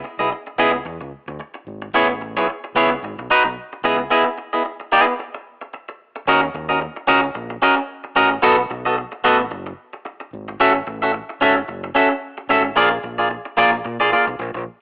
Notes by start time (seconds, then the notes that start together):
0.04 muted clean electric guitar stroke
0.19 B1 B3 E4 G#4 D#5
0.32 muted clean electric guitar stroke
0.47 muted clean electric guitar stroke
0.58 C#2 B3 E4 G#4 D#5
0.74 muted clean electric guitar stroke
0.85 E2, muted clean electric guitar stroke
1.01 C#2, muted clean electric guitar stroke
1.28 D2, muted clean electric guitar stroke
1.40 muted clean electric guitar stroke
1.54 muted clean electric guitar stroke
1.67 G#1
1.82 muted clean electric guitar stroke
1.93 A1 B3 E4 G#4 C#5
2.10 muted clean electric guitar stroke
2.21 muted clean electric guitar stroke
2.36 B1 B3 E4 G#4 C#5
2.49 muted clean electric guitar stroke
2.64 muted clean electric guitar stroke
2.75 C#2 B3 E4 G#4 C#5
2.92 muted clean electric guitar stroke
3.02 G#1, muted clean electric guitar stroke
3.18 B1, muted clean electric guitar stroke
3.30 D#4 F#4 B4 D#5
3.45 B1, muted clean electric guitar stroke
3.73 muted clean electric guitar stroke
3.84 C#2 B3 E4 G#4 D#5
3.99 muted clean electric guitar stroke
4.10 B3 E4 G#4 D#5
4.26 muted clean electric guitar stroke
4.38 muted clean electric guitar stroke
4.53 B3 E4 G#4 D#5
4.65 muted clean electric guitar stroke
4.80 muted clean electric guitar stroke
4.92 B3 E4 G#4 D#5
5.08 muted clean electric guitar stroke
5.19 muted clean electric guitar stroke
5.35 muted clean electric guitar stroke
5.61 muted clean electric guitar stroke
5.74 muted clean electric guitar stroke
5.89 muted clean electric guitar stroke
6.16 muted clean electric guitar stroke
6.27 D#2 C#4 F#4 A#4 D#5
6.43 muted clean electric guitar stroke
6.54 D#2, muted clean electric guitar stroke
6.69 C#4 F#4 A#4 D#5
6.81 muted clean electric guitar stroke
6.96 muted clean electric guitar stroke
7.07 C#2 C#4 F#4 A#4 D#5
7.23 muted clean electric guitar stroke
7.35 A#1, muted clean electric guitar stroke
7.50 muted clean electric guitar stroke
7.62 C#4 F#4 A#4 D#5
7.77 muted clean electric guitar stroke
8.04 muted clean electric guitar stroke
8.16 A1 C#4 F#4 A#4 D#5
8.31 muted clean electric guitar stroke
8.42 B1 B3 F#4 A4 D#5
8.58 muted clean electric guitar stroke
8.70 B1, muted clean electric guitar stroke
8.85 B3 F#4 A4 D#5
8.98 muted clean electric guitar stroke
9.12 muted clean electric guitar stroke
9.24 A1 B3 F#4 A4 D#5
9.40 muted clean electric guitar stroke
9.51 F#1, muted clean electric guitar stroke
9.66 muted clean electric guitar stroke
9.93 muted clean electric guitar stroke
10.05 muted clean electric guitar stroke
10.20 muted clean electric guitar stroke
10.33 G#1
10.48 muted clean electric guitar stroke
10.60 A1 C#4 F#4 A4 E5
10.75 muted clean electric guitar stroke
10.87 A1, muted clean electric guitar stroke
11.02 C#4 F#4 A4 E5
11.13 muted clean electric guitar stroke
11.29 muted clean electric guitar stroke
11.41 G#1 C#4 F#4 A4 E5
11.57 muted clean electric guitar stroke
11.68 F#1, muted clean electric guitar stroke
11.84 muted clean electric guitar stroke
11.95 C#4 F#4 A4 E5
12.11 muted clean electric guitar stroke
12.38 muted clean electric guitar stroke
12.49 G#1 C#4 F#4 A4 E5
12.64 muted clean electric guitar stroke
12.76 A#1 A#3 F4 G#4 D5
12.91 muted clean electric guitar stroke
13.03 A#1, muted clean electric guitar stroke
13.18 A#3 F4 G#4 D5
13.30 muted clean electric guitar stroke
13.45 muted clean electric guitar stroke
13.57 A#1 A#3 F4 G#4 D5
13.73 muted clean electric guitar stroke
13.85 A#2, muted clean electric guitar stroke
14.00 A#1 A#3 F4 G#4 D5
14.12 A#3 F4 G#4 D5
14.27 B1, muted clean electric guitar stroke
14.39 A#1, muted clean electric guitar stroke
14.54 A#1, muted clean electric guitar stroke